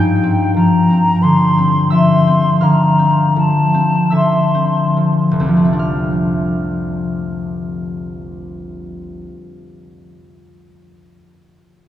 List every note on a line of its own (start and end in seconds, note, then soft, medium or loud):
0.00 3.81 G2 soft
0.00 0.55 F3 soft
0.00 1.29 F5 medium
0.00 0.52 G5 soft
0.00 3.80 G5 medium
0.00 1.28 F6 medium
0.00 3.79 G6 medium
0.23 0.89 C4 soft
0.56 1.91 F3 soft
0.56 1.24 A#5 soft
0.90 1.57 C4 soft
1.23 2.62 D3 soft
1.23 1.92 C6 soft
1.58 2.26 C4 soft
1.90 3.35 F3 soft
1.90 4.10 E5 soft
1.90 2.65 C6 medium
1.90 3.13 E6 medium
2.27 2.98 C4 soft
2.61 4.11 D3 soft
2.61 6.52 F5 soft
2.61 3.37 A#5 soft
2.61 5.78 F6 soft
2.99 3.73 C4 soft
3.36 4.96 F3 soft
3.36 4.14 A5 soft
3.74 4.53 C4 soft
4.10 5.87 D3 soft
4.10 5.87 E5 soft
4.10 5.86 E6 soft
4.17 4.98 C6 soft
4.55 5.38 C4 soft
4.97 5.47 F3 soft
5.31 9.21 F1 soft
5.39 9.30 C2 soft
5.39 5.63 C4 soft
5.49 9.33 F3 soft
5.57 9.41 A3 soft
5.65 9.49 C4 soft
5.73 9.58 D4 soft
5.79 9.64 F6 soft